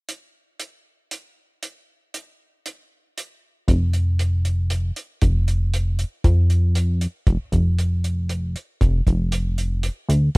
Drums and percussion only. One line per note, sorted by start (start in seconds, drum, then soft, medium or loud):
0.09 closed hi-hat soft
0.60 closed hi-hat soft
1.11 closed hi-hat soft
1.63 closed hi-hat soft
2.14 closed hi-hat soft
2.66 closed hi-hat soft
3.18 closed hi-hat soft
3.68 kick medium
3.68 closed hi-hat medium
3.93 closed hi-hat soft
4.19 closed hi-hat medium
4.45 closed hi-hat soft
4.70 closed hi-hat medium
4.96 closed hi-hat soft
5.22 kick medium
5.22 closed hi-hat medium
5.48 closed hi-hat soft
5.74 closed hi-hat medium
5.99 closed hi-hat soft
6.24 kick medium
6.24 closed hi-hat medium
6.50 closed hi-hat soft
6.75 closed hi-hat medium
7.01 closed hi-hat soft
7.27 kick medium
7.27 closed hi-hat medium
7.53 kick medium
7.53 closed hi-hat soft
7.79 closed hi-hat medium
8.04 closed hi-hat soft
8.29 closed hi-hat medium
8.56 closed hi-hat soft
8.81 kick medium
8.81 closed hi-hat medium
9.07 kick medium
9.07 closed hi-hat soft
9.32 closed hi-hat medium
9.58 closed hi-hat soft
9.83 closed hi-hat medium
10.10 closed hi-hat soft